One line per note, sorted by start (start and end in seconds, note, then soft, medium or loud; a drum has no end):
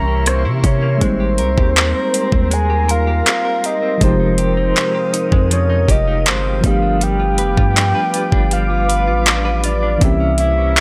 0.00 0.47 C2 loud
0.00 1.09 C3 medium
0.00 0.96 E3 medium
0.00 0.26 A#3 medium
0.00 0.96 A#3 medium
0.00 0.97 C4 medium
0.00 0.98 C#4 medium
0.00 0.44 E4 medium
0.00 0.99 G4 medium
0.00 0.98 A#4 medium
0.00 0.98 E5 medium
0.00 0.25 A#5 loud
0.00 3.97 C6 medium
0.00 0.98 C#6 medium
0.08 0.62 C#4 medium
0.26 0.82 A#3 medium
0.26 0.43 C5 loud
0.26 cross-stick loud
0.26 closed hi-hat medium
0.45 0.63 C3 medium
0.45 1.09 E4 medium
0.64 1.00 C3 loud
0.64 1.09 C#4 medium
0.64 1.05 C#5 loud
0.64 kick loud
0.64 closed hi-hat medium
0.82 1.01 A#3 medium
0.98 1.41 G#1 loud
0.98 3.96 G#3 medium
0.98 2.51 G#3 medium
0.98 3.96 A#3 medium
0.98 3.97 C4 medium
0.98 6.60 A#4 medium
0.98 3.98 A#5 medium
0.98 kick loud
0.98 closed hi-hat medium
1.03 3.99 G3 medium
1.03 3.98 D#4 medium
1.03 2.55 C5 loud
1.20 1.57 G4 medium
1.38 1.57 C2 loud
1.38 1.94 A#4 medium
1.38 closed hi-hat medium
1.58 1.94 D#2 loud
1.58 2.13 G4 medium
1.58 kick loud
1.76 2.32 C4 medium
1.76 clap loud
1.76 closed hi-hat medium
1.95 2.87 A#4 medium
2.14 2.69 G4 medium
2.14 closed hi-hat medium
2.32 3.22 D#2 loud
2.32 3.26 C4 medium
2.32 kick loud
2.51 4.42 G#3 medium
2.51 2.92 G#5 loud
2.51 closed hi-hat medium
2.70 3.07 G4 medium
2.89 3.44 A#4 medium
2.89 3.67 F5 loud
2.89 closed hi-hat medium
3.07 3.63 G4 medium
3.26 3.82 C4 medium
3.26 clap loud
3.26 closed hi-hat medium
3.45 4.09 A#4 medium
3.63 4.38 G4 medium
3.63 4.02 D#5 loud
3.63 closed hi-hat medium
3.82 4.19 C4 medium
3.98 4.73 F1 loud
3.98 6.60 C3 medium
3.98 6.58 F3 medium
3.98 5.50 F3 medium
3.98 6.59 G#3 medium
3.98 9.97 F5 medium
3.98 6.61 D#6 medium
3.98 kick loud
3.98 closed hi-hat medium
4.03 6.61 D#4 medium
4.03 6.62 G4 medium
4.03 5.48 C5 loud
4.20 4.56 D#4 medium
4.38 4.94 G4 medium
4.38 closed hi-hat medium
4.57 5.12 D#4 medium
4.76 5.31 G#3 medium
4.76 clap loud
4.76 closed hi-hat medium
4.95 5.88 G4 medium
5.13 5.68 D#4 medium
5.13 closed hi-hat medium
5.32 5.86 F2 loud
5.32 6.25 G#3 medium
5.32 kick loud
5.51 7.04 F3 medium
5.51 5.92 C#5 loud
5.51 closed hi-hat medium
5.70 6.06 D#4 medium
5.88 6.28 F1 loud
5.88 6.44 G4 medium
5.88 6.30 D#5 loud
5.88 kick medium
5.88 closed hi-hat medium
6.07 6.71 D#4 medium
6.26 6.62 G1 loud
6.26 6.63 G#3 medium
6.26 6.67 C5 medium
6.26 clap loud
6.26 closed hi-hat medium
6.45 7.19 G4 medium
6.60 7.40 G1 loud
6.60 9.58 F3 medium
6.60 7.01 G3 medium
6.60 9.59 A3 medium
6.60 9.60 B3 medium
6.60 9.98 B4 medium
6.60 9.98 D6 medium
6.60 kick loud
6.60 closed hi-hat medium
6.66 9.61 D4 medium
6.66 9.62 G4 medium
6.66 7.05 F5 loud
6.82 7.75 D4 medium
7.01 8.51 G3 medium
7.01 8.52 G5 loud
7.01 closed hi-hat medium
7.20 7.56 F4 medium
7.38 7.57 F1 medium
7.38 7.94 B4 medium
7.38 closed hi-hat medium
7.57 7.94 G2 loud
7.57 8.12 F4 medium
7.57 kick loud
7.76 8.31 D4 medium
7.76 clap loud
7.76 closed hi-hat medium
7.95 8.88 B4 medium
8.14 8.69 F4 medium
8.14 closed hi-hat medium
8.32 9.09 G1 loud
8.32 9.25 D4 medium
8.32 kick medium
8.51 10.23 G3 medium
8.51 9.61 F5 loud
8.51 closed hi-hat medium
8.70 9.06 F4 medium
8.89 9.44 B4 medium
8.89 closed hi-hat medium
9.08 9.97 A1 medium
9.08 9.63 F4 medium
9.26 9.81 D4 medium
9.26 clap loud
9.26 closed hi-hat medium
9.45 10.09 B4 medium
9.64 10.09 F4 medium
9.64 10.05 D5 medium
9.64 closed hi-hat medium
9.83 10.09 D4 medium
9.98 10.80 C2 loud
9.98 10.80 C3 medium
9.98 10.80 E3 medium
9.98 10.80 A#3 medium
9.98 10.80 C4 medium
9.98 10.80 C5 medium
9.98 10.80 E5 medium
9.98 10.80 A#5 medium
9.98 10.80 C#6 medium
9.98 kick loud
9.98 closed hi-hat medium
10.03 10.80 C#4 medium
10.03 10.80 G4 medium
10.03 10.40 E5 loud
10.20 10.57 C#4 medium
10.38 10.80 E4 medium
10.38 10.80 E5 medium
10.38 closed hi-hat medium
10.58 10.80 C#4 medium
10.76 10.80 A#3 medium
10.76 clap loud
10.76 closed hi-hat medium